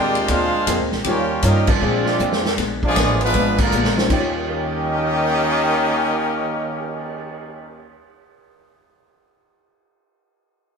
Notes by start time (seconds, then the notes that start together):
Already playing: D#2 A#2 G#3 C4 D4 F4 G4 A#4 C5 D5 G5
0.15 ride
0.28 D2 A#2 G#3 C4 D4 F4 G#4 C5 F5, kick, ride
0.66 F2 A#2 G#3 C4 D4 F4 A#4, kick, hi-hat pedal, ride
0.80 D2
0.92 A#1, snare
1.03 D#2 D#3 F3 G3 A#3 C#4 D#4 F4 G4 A#4, kick, ride
1.08 A#3 F4 G4 C#5
1.43 G2 D#3 F3 G3 A#3 C#4 D#4 F4 G4 A#4 D#5, kick, hi-hat pedal, ride
1.67 F3 G#3 C4 D4 F4 G#4 D5, kick, crash
1.81 A#2 G#3 C4 D4 F4 G#4
2.05 G#3 C4 D4 F4, snare
2.19 F2 A#2 G#3 C4 D4, hi-hat pedal
2.32 snare
2.45 snare
2.56 A#1 A#2 G#3 B3 D4, kick, snare, ride
2.83 F3 G#3 B3 D4 F4 G#4 D5, kick
2.96 A1 A#2 G#3 B3 D4 F4 A#4, kick, snare, hi-hat pedal, ride
3.21 F3 G#3 B3 D4 F4 B4, ride
3.33 G#1 A#2 G#3 B3 D4, kick, ride
3.58 D3 F3 G#3 A#3 D4 F4 A#4, kick, crash
3.72 A#1 A#2 G#3 B3 D4, hi-hat pedal
3.84 snare
3.97 G3 C#4 D#4 F4 C5, snare
4.06 D#2 D#3, kick, crash
4.10 D#3 G3 A#3 C#4 F4 G4 A#4 D#5
4.16 C#4 F4
4.35 cymbal swell
4.48 A#4
4.56 C#5
4.64 F5
4.73 A#5
4.83 C#6
4.94 F6
5.06 A#6
5.18 C#7